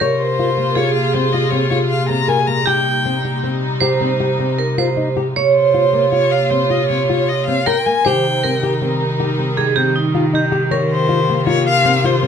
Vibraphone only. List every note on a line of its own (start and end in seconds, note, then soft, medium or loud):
0.00 0.79 A#4 loud
0.75 2.71 G#4 medium
2.66 3.77 G4 medium
3.81 4.54 C5 loud
4.58 4.76 A#4 medium
4.78 5.14 C5 medium
5.36 7.63 C#5 loud
7.66 8.02 A#4 medium
8.05 8.44 C5 medium
8.44 9.61 A#4 medium
9.57 9.77 G#4 medium
9.76 9.94 G4 medium
9.96 10.35 D#4 medium
10.35 10.73 G4 medium
10.72 12.27 A#4 medium